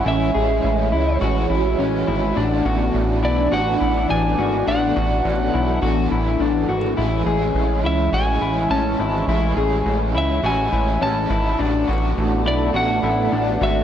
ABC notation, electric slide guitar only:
X:1
M:4/4
L:1/8
Q:1/4=104
K:A
V:1 name="Electric slide guitar"
e4 z4 | z3 d f2 g2 | f4 z4 | z3 e g2 a2 |
z3 e g2 a2 | z3 d f3 e |]